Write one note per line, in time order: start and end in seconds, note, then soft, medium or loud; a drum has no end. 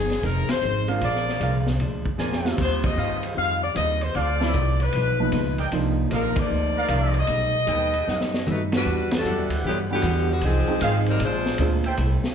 0.00 0.22 G1 medium
0.00 0.10 F2 medium
0.00 0.11 D#3 medium
0.00 0.11 G#3 medium
0.00 0.11 C4 medium
0.00 0.21 G#4 medium
0.10 snare soft
0.10 ride soft
0.22 0.47 F1 medium
0.22 0.50 F2 soft
0.22 0.50 D#3 soft
0.22 0.50 G#3 soft
0.22 0.51 C4 medium
0.22 0.49 A#4 medium
0.22 kick soft
0.22 ride medium
0.48 0.89 C5 medium
0.48 snare medium
0.48 ride medium
0.61 1.01 G#1 medium
0.61 0.89 F2 medium
0.61 0.89 D#3 medium
0.61 0.90 G#3 medium
0.61 0.90 C4 medium
0.61 hi-hat pedal soft
0.88 1.00 G#3 medium
0.88 1.00 C4 soft
0.88 1.00 D4 soft
0.88 1.00 F4 medium
0.88 1.38 G#4 medium
0.88 1.39 A#4 medium
0.88 1.39 D5 medium
0.88 1.38 F5 medium
0.88 ride soft
1.00 1.40 A#1 medium
1.00 1.28 A#2 soft
1.00 1.28 F3 soft
1.00 1.29 G#3 soft
1.00 1.29 D4 soft
1.00 kick soft
1.00 ride medium
1.04 1.64 D5 loud
1.16 snare soft
1.29 snare soft
1.39 1.79 C2 medium
1.39 1.67 A#2 medium
1.39 1.68 F3 medium
1.39 1.67 G#3 medium
1.39 1.68 D4 medium
1.39 1.58 G#4 medium
1.39 1.58 A#4 medium
1.39 1.58 D5 medium
1.39 1.58 F5 medium
1.39 kick soft
1.39 hi-hat pedal medium
1.39 ride medium
1.66 snare soft
1.79 2.18 D2 medium
1.79 2.06 A#2 soft
1.79 2.07 F3 soft
1.79 2.08 G#3 soft
1.79 2.08 D4 medium
1.79 kick soft
1.79 ride soft
2.06 kick soft
2.18 2.57 F2 medium
2.18 2.46 A#2 medium
2.18 2.46 F3 medium
2.18 2.46 G#3 medium
2.18 2.46 D4 medium
2.18 2.58 G#4 medium
2.18 2.58 A#4 medium
2.18 2.58 D5 medium
2.18 2.58 G#5 medium
2.18 snare soft
2.18 hi-hat pedal medium
2.32 snare medium
2.44 2.95 G3 medium
2.44 2.95 A#3 soft
2.44 2.95 C4 medium
2.44 2.95 F4 medium
2.44 snare medium
2.57 2.96 D#2 medium
2.57 2.85 D#3 soft
2.57 2.85 G3 soft
2.57 2.85 C4 soft
2.57 2.86 F4 soft
2.57 kick medium
2.57 snare soft
2.57 crash medium
2.62 2.84 C5 medium
2.84 3.24 D#5 medium
2.84 kick medium
2.84 ride medium
2.95 3.35 G2 medium
2.95 3.23 D#3 medium
2.95 3.24 G3 medium
2.95 3.24 C4 medium
2.95 3.25 F4 medium
2.95 3.57 G4 medium
2.95 3.57 C5 medium
2.95 3.57 D#5 medium
2.95 3.57 F5 medium
2.95 hi-hat pedal soft
3.23 ride medium
3.35 3.74 F2 medium
3.35 3.63 D#3 soft
3.35 3.63 G3 soft
3.35 3.64 C4 soft
3.35 3.64 F4 soft
3.35 3.61 F5 loud
3.35 kick soft
3.63 3.75 D5 medium
3.75 4.14 D#2 medium
3.75 4.02 D#3 medium
3.75 4.03 G3 medium
3.75 4.03 C4 medium
3.75 4.03 F4 medium
3.75 4.00 D#5 medium
3.75 kick soft
3.75 hi-hat pedal medium
3.75 ride medium
4.01 4.15 C5 medium
4.01 ride soft
4.15 4.53 D2 medium
4.15 4.42 D3 soft
4.15 4.43 A3 soft
4.15 4.43 C4 soft
4.15 4.43 F4 soft
4.15 4.75 A4 medium
4.15 4.75 C5 medium
4.15 4.75 D5 medium
4.15 4.81 D5 medium
4.15 4.75 F5 medium
4.15 kick soft
4.15 ride medium
4.40 4.53 F3 medium
4.40 4.53 A3 medium
4.40 4.53 C4 medium
4.40 4.53 E4 medium
4.40 snare medium
4.54 4.93 C2 medium
4.54 4.81 D3 medium
4.54 4.82 A3 medium
4.54 4.82 C4 medium
4.54 4.82 F4 medium
4.54 kick soft
4.54 hi-hat pedal soft
4.54 ride medium
4.80 5.60 B4 medium
4.80 ride soft
4.93 5.32 B1 medium
4.93 5.21 G2 soft
4.93 5.22 F3 soft
4.93 5.22 B3 soft
4.93 5.22 D#4 soft
4.93 kick soft
4.93 ride medium
5.20 5.32 F3 medium
5.20 5.32 A#3 medium
5.20 5.32 B3 medium
5.20 5.32 D#4 medium
5.32 5.71 C#2 medium
5.32 5.59 G2 medium
5.32 5.60 F3 medium
5.32 5.60 B3 medium
5.32 5.60 D#4 medium
5.32 kick soft
5.32 hi-hat pedal medium
5.32 ride medium
5.58 5.68 A#4 medium
5.58 5.68 D5 medium
5.58 5.68 D#5 medium
5.58 5.68 G5 medium
5.58 ride soft
5.72 6.10 C2 medium
5.72 5.99 C3 soft
5.72 6.82 F3 medium
5.72 6.00 F3 medium
5.72 6.82 A#3 medium
5.72 6.00 A#3 medium
5.72 6.82 D4 medium
5.72 6.82 D#4 medium
5.72 6.00 D#4 soft
5.72 kick soft
5.72 ride medium
6.10 6.35 A#1 medium
6.10 6.38 C3 medium
6.10 6.38 F3 medium
6.10 6.38 A#3 medium
6.10 6.39 D#4 medium
6.10 6.29 A#4 medium
6.10 6.29 D5 medium
6.10 6.29 D#5 medium
6.10 6.29 F5 medium
6.10 kick soft
6.10 hi-hat pedal soft
6.10 ride medium
6.14 6.37 A#4 medium
6.36 7.17 D5 loud
6.36 muted upright bass stroke soft
6.36 kick medium
6.36 ride medium
6.49 6.88 D2 medium
6.49 6.77 C3 soft
6.49 6.77 F3 soft
6.49 6.77 A#3 soft
6.49 6.78 D#4 soft
6.77 7.27 D#4 medium
6.77 7.27 A#4 medium
6.77 7.27 D5 medium
6.77 7.27 F5 loud
6.88 7.27 C2 medium
6.88 7.17 C3 medium
6.88 7.17 F3 medium
6.88 7.17 A#3 medium
6.88 7.17 D#4 medium
6.88 kick soft
6.88 hi-hat pedal medium
6.88 ride medium
7.14 ride soft
7.19 8.48 D#5 loud
7.27 7.67 B1 medium
7.27 7.56 B2 soft
7.27 7.56 G3 soft
7.27 7.56 A3 soft
7.27 7.57 D#4 soft
7.27 kick soft
7.27 ride medium
7.67 8.06 D#2 medium
7.67 7.95 B2 medium
7.67 7.95 G3 medium
7.67 7.95 A3 medium
7.67 7.95 D#4 medium
7.67 8.28 A4 medium
7.67 8.28 B4 medium
7.67 8.28 D#5 medium
7.67 8.28 G5 medium
7.67 kick soft
7.67 hi-hat pedal soft
7.67 ride medium
7.94 ride soft
8.07 8.45 F#2 medium
8.07 8.35 B2 soft
8.07 8.35 G3 medium
8.07 8.35 A3 soft
8.07 8.36 D#4 medium
8.07 snare soft
8.21 snare soft
8.34 snare medium
8.46 8.85 G2 medium
8.46 8.74 B2 medium
8.46 8.74 G3 medium
8.46 8.74 A3 medium
8.46 8.74 D#4 medium
8.46 hi-hat pedal medium
8.46 high tom medium
8.51 8.62 A3 medium
8.51 8.62 D#4 medium
8.51 8.62 F#4 medium
8.51 8.62 B4 medium
8.72 9.22 E2 medium
8.72 9.22 G3 soft
8.72 9.22 B3 soft
8.72 9.22 D4 soft
8.72 9.22 F#4 medium
8.72 snare medium
8.72 ride medium
8.77 9.11 G3 medium
8.77 9.11 D4 medium
8.77 9.11 F#4 medium
8.77 9.11 B4 medium
8.86 9.24 E2 medium
8.86 9.13 E3 soft
8.86 9.13 G3 soft
8.86 9.14 D4 soft
8.86 9.14 F#4 medium
9.11 snare medium
9.11 ride medium
9.16 9.51 G3 medium
9.16 9.51 D4 medium
9.16 9.51 F#4 medium
9.16 9.50 A4 medium
9.24 9.38 F#2 medium
9.24 9.52 E3 medium
9.24 9.53 G3 medium
9.24 9.53 D4 medium
9.24 9.53 F#4 medium
9.24 9.85 G4 medium
9.24 9.85 D5 medium
9.24 9.85 E5 medium
9.24 9.85 F#5 medium
9.24 hi-hat pedal medium
9.38 9.49 E2 medium
9.49 9.62 D2 medium
9.49 ride medium
9.64 10.02 G2 medium
9.64 9.78 D3 medium
9.64 9.92 E3 soft
9.64 9.79 F#3 medium
9.64 9.92 G3 soft
9.64 9.78 B3 medium
9.64 9.92 D4 soft
9.64 9.93 F#4 medium
9.64 9.78 G4 medium
9.64 kick soft
9.90 10.28 D3 medium
9.90 10.40 E3 medium
9.90 10.40 G3 medium
9.90 10.40 B3 medium
9.90 10.28 B3 medium
9.90 10.40 D4 medium
9.90 10.28 F#4 medium
9.90 10.28 G4 medium
9.90 10.40 F#5 medium
10.02 10.41 E2 loud
10.02 10.31 E3 medium
10.02 10.31 G3 medium
10.02 10.31 D4 medium
10.02 10.31 F#4 medium
10.02 kick soft
10.02 hi-hat pedal medium
10.02 ride medium
10.30 10.43 D3 medium
10.30 10.43 G3 medium
10.30 10.43 B3 medium
10.30 10.43 F#4 medium
10.41 10.66 C2 medium
10.41 10.70 F2 soft
10.41 10.70 D#3 soft
10.41 11.04 F3 medium
10.41 10.71 G#3 soft
10.41 11.04 C4 medium
10.41 10.71 C4 soft
10.41 11.04 D#4 medium
10.41 11.04 G#4 loud
10.41 kick soft
10.41 ride medium
10.68 11.18 F3 medium
10.68 11.18 G#3 medium
10.68 11.18 C4 medium
10.68 11.18 D#4 medium
10.68 11.18 G5 medium
10.81 11.19 G#1 medium
10.81 11.08 F2 medium
10.81 11.09 D#3 medium
10.81 11.09 G#3 medium
10.81 11.09 C4 medium
10.81 10.99 G#4 medium
10.81 10.99 C5 medium
10.81 10.99 D#5 medium
10.81 10.99 F5 medium
10.81 kick soft
10.81 hi-hat pedal soft
10.81 ride medium
11.06 11.22 G3 medium
11.06 11.22 C4 medium
11.06 11.22 D#4 medium
11.06 11.22 A#4 medium
11.06 ride soft
11.20 11.58 A#1 medium
11.20 11.48 A#2 soft
11.20 11.48 G#3 soft
11.20 11.83 G#3 medium
11.20 11.48 C4 medium
11.20 11.49 D4 soft
11.20 11.83 C5 loud
11.20 kick soft
11.20 ride medium
11.24 11.83 D4 medium
11.24 11.83 F4 medium
11.46 snare medium
11.58 11.97 D2 medium
11.58 11.87 A#2 medium
11.58 11.82 G#3 medium
11.58 11.87 G#3 medium
11.58 11.83 A#3 medium
11.58 11.83 C4 medium
11.58 11.87 C4 medium
11.58 11.83 D4 soft
11.58 11.87 D4 medium
11.58 11.83 F4 medium
11.58 kick soft
11.58 hi-hat pedal medium
11.58 ride medium
11.84 11.95 A4 medium
11.84 11.95 C5 medium
11.84 11.95 E5 medium
11.84 11.95 G5 medium
11.84 ride soft
11.97 12.22 C2 medium
11.97 12.25 C3 soft
11.97 12.26 G3 medium
11.97 12.26 A3 medium
11.97 12.27 E4 medium
11.97 kick soft
11.97 ride medium
12.24 snare medium